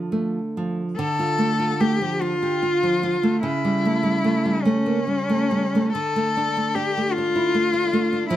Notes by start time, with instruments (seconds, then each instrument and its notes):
Already playing: nylon-string guitar D3 F3
0.12 nylon-string guitar A3
0.57 nylon-string guitar F3
0.97 nylon-string guitar D3, cello A4
1.19 nylon-string guitar F4
1.38 nylon-string guitar A3
1.59 nylon-string guitar F4
1.80 nylon-string guitar A3, cello G4
2.01 nylon-string guitar F3
2.21 cello F4, nylon-string guitar F4
2.43 nylon-string guitar G4
2.63 nylon-string guitar F4
2.83 nylon-string guitar F3
3.03 nylon-string guitar F4
3.23 nylon-string guitar A3
3.42 nylon-string guitar C#3, cello E4
3.65 nylon-string guitar G3
3.85 nylon-string guitar A3
4.03 nylon-string guitar G3
4.24 nylon-string guitar A3
4.46 nylon-string guitar G3
4.62 nylon-string guitar A3, cello C#4
4.86 nylon-string guitar A#3
5.07 nylon-string guitar G3
5.30 nylon-string guitar A3
5.51 nylon-string guitar G3
5.75 nylon-string guitar A3
5.93 nylon-string guitar D3, cello A4
6.16 nylon-string guitar A3
6.37 nylon-string guitar D4
6.57 nylon-string guitar A3
6.74 nylon-string guitar D4, cello G4
6.97 nylon-string guitar A3
7.14 cello F4
7.18 nylon-string guitar D4
7.35 nylon-string guitar E4
7.54 nylon-string guitar A3
7.74 nylon-string guitar D4
7.93 nylon-string guitar A3
8.13 nylon-string guitar D4
8.29 nylon-string guitar F3, cello E4